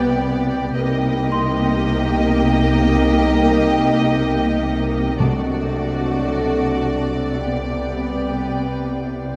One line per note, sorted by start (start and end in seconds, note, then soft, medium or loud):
0.00 0.72 C2 medium
0.00 0.72 C3 medium
0.00 0.58 G3 medium
0.00 0.58 B3 medium
0.00 0.72 B3 medium
0.00 0.72 G4 medium
0.00 0.76 B4 medium
0.00 0.71 D5 soft
0.00 0.76 D5 medium
0.00 0.75 G5 medium
0.00 2.94 D#7 medium
0.74 5.16 C2 medium
0.74 5.16 C3 medium
0.74 5.16 A#3 medium
0.74 5.16 D#4 medium
0.74 5.15 G4 medium
0.74 5.21 A#4 medium
0.74 5.16 D#5 medium
0.74 5.21 D#5 medium
0.74 5.16 G5 medium
1.32 4.61 C6 medium
5.19 9.36 C2 medium
5.19 6.83 C3 medium
5.19 9.36 C3 soft
5.19 7.38 F#3 soft
5.19 7.39 A3 soft
5.19 7.38 D4 medium
5.19 7.38 F#4 medium
5.19 7.43 A4 medium
5.19 9.36 D5 soft
5.19 9.36 D5 medium
5.19 7.43 F#5 soft
5.19 8.49 A5 soft
7.42 9.29 G3 soft
7.42 9.29 B3 soft
7.42 9.36 B3 soft
7.42 9.36 G4 soft
7.42 9.36 B4 medium
7.42 9.36 G5 soft